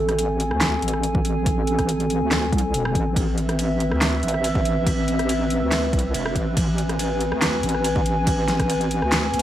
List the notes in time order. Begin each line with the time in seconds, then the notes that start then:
Already playing: A1 C4 A4 G#5
0.09 cross-stick, closed hi-hat
0.19 closed hi-hat
0.40 closed hi-hat
0.51 D2, cross-stick
0.61 snare, clap, closed hi-hat
0.82 A1, closed hi-hat
0.88 closed hi-hat
0.93 cross-stick
1.03 closed hi-hat
1.15 kick
1.25 closed hi-hat
1.46 kick, closed hi-hat
1.67 closed hi-hat
1.79 kick, cross-stick, closed hi-hat
1.89 closed hi-hat
2.00 closed hi-hat
2.10 closed hi-hat
2.21 D2
2.31 snare, clap, closed hi-hat
2.52 C2, kick, closed hi-hat
2.58 closed hi-hat
2.74 E1, closed hi-hat
2.85 cross-stick
2.95 A1, kick, closed hi-hat
3.16 A1 B4 E5, kick, closed hi-hat, ride
3.38 closed hi-hat
3.49 cross-stick, closed hi-hat
3.59 closed hi-hat, ride
3.80 closed hi-hat
3.91 D2, cross-stick
4.01 snare, clap, closed hi-hat, ride
4.23 A1, closed hi-hat
4.28 closed hi-hat
4.34 cross-stick
4.44 closed hi-hat, ride
4.55 kick
4.65 closed hi-hat
4.87 kick, closed hi-hat, ride
5.08 closed hi-hat
5.19 cross-stick, closed hi-hat
5.29 closed hi-hat, ride
5.50 closed hi-hat
5.62 D2
5.72 snare, clap, closed hi-hat, ride
5.93 C2, kick, closed hi-hat
5.99 closed hi-hat
6.14 E1, closed hi-hat, ride
6.26 cross-stick
6.35 A1, kick, closed hi-hat
6.57 A1 G#5, kick, closed hi-hat, ride
6.78 closed hi-hat
6.89 cross-stick, closed hi-hat
6.99 closed hi-hat, ride
7.21 closed hi-hat
7.32 D2, cross-stick
7.42 snare, clap, closed hi-hat, ride
7.63 A1, closed hi-hat
7.69 closed hi-hat
7.74 cross-stick
7.84 closed hi-hat, ride
7.96 kick
8.06 closed hi-hat
8.27 kick, closed hi-hat, ride
8.48 snare, closed hi-hat
8.60 kick, cross-stick, closed hi-hat
8.70 closed hi-hat, ride
8.81 closed hi-hat
8.91 closed hi-hat
9.02 D2, cross-stick
9.12 snare, clap, closed hi-hat, ride
9.34 D2, closed hi-hat